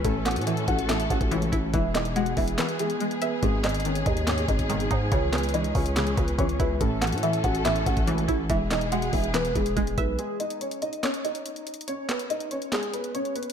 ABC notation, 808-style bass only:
X:1
M:4/4
L:1/16
Q:1/4=142
K:G#phr
V:1 name="808-style bass" clef=bass
A,,,3 A,,3 A,,,4 A,,, A,,,3 A,,,2 | E,,,6 E,,,2 z8 | G,,,6 D,,4 G,,,4 G,,2 | C,,6 C,,4 C,,2 C,,2 C,,2 |
A,,,3 A,,3 A,,,4 A,,,4 A,,,2 | E,,,6 E,,,4 E,,,2 E,,,2 B,,,2 | z16 | z16 |]